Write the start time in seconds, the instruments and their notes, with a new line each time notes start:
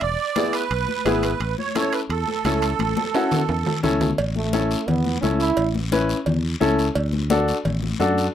0.01 fingered electric bass E1, accordion D5, high conga, high timbale, long guiro
0.36 upright piano B3 E4 G#4, high conga, high timbale, short guiro
0.53 accordion B4, high timbale, short guiro
0.71 fingered electric bass B1, high conga, high timbale, long guiro
0.88 high conga
1.05 fingered electric bass G#1, upright piano B3 E4 G#4, high conga, high timbale, low timbale, short guiro
1.23 accordion B4, high timbale, short guiro
1.40 fingered electric bass A1, high conga, high timbale, long guiro
1.58 accordion C#5, high conga
1.75 upright piano C#4 E4 A4, accordion C#5, high conga, high timbale, short guiro
1.92 accordion B4, high timbale, short guiro
2.09 fingered electric bass E2, accordion A4, high conga, high timbale, long guiro
2.28 high conga
2.45 fingered electric bass C#2, upright piano C#4 E4 A4, high conga, high timbale, low timbale, short guiro
2.62 high timbale, short guiro
2.79 fingered electric bass A1, high conga, high timbale, long guiro
2.97 high conga
3.14 upright piano C#4 E4 F#4, high timbale, short guiro
3.31 low conga, high timbale, short guiro
3.49 fingered electric bass E2, high timbale, long guiro
3.66 low conga, low timbale
3.83 fingered electric bass C#2, upright piano C#4 E4 A4, low conga, low timbale, short guiro
4.01 low conga, low timbale, short guiro
4.18 fingered electric bass A1, cowbell, high conga, long guiro
4.36 trombone A3, high conga
4.53 upright piano C#4 E4 A4, high conga, short guiro
4.71 short guiro
4.87 fingered electric bass E2, trombone B3, cowbell, high conga, low conga, long guiro
5.05 high conga
5.21 fingered electric bass C#2, trombone C#4, upright piano C#4 E4 A4, high conga, short guiro
5.39 trombone E4, short guiro
5.57 fingered electric bass A1, cowbell, high conga, long guiro
5.75 high conga
5.92 upright piano C#4 E4 B4, high conga, short guiro
6.09 short guiro
6.26 fingered electric bass E2, cowbell, high conga, low conga, long guiro
6.60 fingered electric bass C#2, upright piano C#4 E4 A4, high conga, short guiro
6.79 short guiro
6.95 fingered electric bass D2, cowbell, long guiro
7.13 high conga
7.30 upright piano D4 F#4 A4, high conga, short guiro
7.48 short guiro
7.65 fingered electric bass A1, cowbell, high conga, low conga, long guiro
7.83 high conga
8.00 fingered electric bass F#2, upright piano D4 F#4 A4, high conga, short guiro
8.18 short guiro